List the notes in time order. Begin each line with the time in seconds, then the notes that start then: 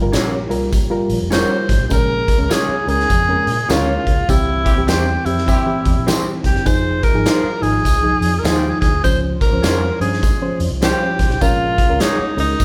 Already playing: F3 A#3 G4
0.01 G1 G3 F4 A#4
0.13 A#1 C#4 F4 A#4 C#5, snare, closed hi-hat, tambourine
0.49 C2 G3 F4 A#4, closed hi-hat
0.73 kick, closed hi-hat, tambourine
0.90 G3 F4 A#4
1.10 A#1, closed hi-hat
1.21 F1
1.30 G3 C#4 F4 A#4 C5 C#5, snare, closed hi-hat, tambourine
1.69 G1, kick, snare, closed hi-hat
1.80 B1
1.89 A#1 C#3 G#3 A#3 C#4 G#4 A#4, kick, closed hi-hat, tambourine
2.28 kick, closed hi-hat
2.38 C#2 G#3 C#4 A#4
2.50 C#4 F4 G#4 C#5, snare, closed hi-hat, tambourine
2.69 muted fingered electric bass stroke
2.87 C#2 G#3 C#4 G#4 A#4, closed hi-hat
3.00 snare
3.10 F2, kick, closed hi-hat, tambourine
3.28 G#3 C#4 A#4
3.47 A#2, closed hi-hat
3.69 D2 G#3 C#4 F4 G#4 A#4 C#5, snare, closed hi-hat, tambourine
4.07 C#2, kick, closed hi-hat
4.28 C2 E3 C4 E4 G4, kick, closed hi-hat, tambourine
4.65 C4 E4 G4, kick, closed hi-hat
4.76 C2 E3 C4 G4
4.87 E2 C4 E4 G4 C5, snare, closed hi-hat, tambourine
5.25 F2 E3 C4 E4 G4, closed hi-hat
5.38 snare
5.48 C4 E4 G4, kick, closed hi-hat, tambourine
5.66 E3 C4 G4
5.85 E2, kick, closed hi-hat
5.95 A#1
6.06 E3 C4 E4 G4 C5, snare, closed hi-hat, tambourine
6.44 C2 G4, kick, snare, closed hi-hat
6.54 F#1, snare
6.65 F1 F3 D#4 G#4 C5, kick, closed hi-hat, tambourine
7.03 A#4, kick, closed hi-hat
7.14 G#1 F3 D#4 G#4
7.25 G#3 D#4 F4 C5, snare, closed hi-hat, tambourine
7.44 muted fingered electric bass stroke
7.62 G#1 F3 D#4 G#4, closed hi-hat
7.85 C2, kick, closed hi-hat, tambourine
8.03 F3 D#4 G#4
8.21 F2, closed hi-hat
8.39 A#4
8.44 D#2 F3 G#3 D#4 F4 G#4 C5, snare, closed hi-hat, tambourine
8.58 G4
8.70 G#4
8.81 D2 G#4, kick, snare, closed hi-hat
9.03 C#2 F3 C#4 C5, kick, closed hi-hat, tambourine
9.41 A#4, kick, closed hi-hat
9.51 C#2 F3 C#4 C5
9.62 F2 G#3 C#4 F4 C5, snare, closed hi-hat, tambourine
10.00 G2 F3 C#4 G#4 C5, closed hi-hat
10.13 snare
10.23 kick, closed hi-hat, tambourine
10.41 F3 C#4 C5
10.60 F2, closed hi-hat
10.71 C2
10.81 F3 G#3 C#4 F4 G4 C5, snare, closed hi-hat, tambourine
11.19 C#2, kick, snare, closed hi-hat
11.29 B1, snare
11.41 A#1 G#3 C#4 F4 A#4, kick, closed hi-hat, tambourine
11.78 kick, closed hi-hat
11.89 C#2 G#3 C#4 A#4
12.00 A#3 D#4 F4 G#4 C#5, snare, closed hi-hat, tambourine
12.19 muted fingered electric bass stroke
12.36 C#2 G#3 C#4 D#4 A#4, closed hi-hat
12.60 F2, kick, closed hi-hat, tambourine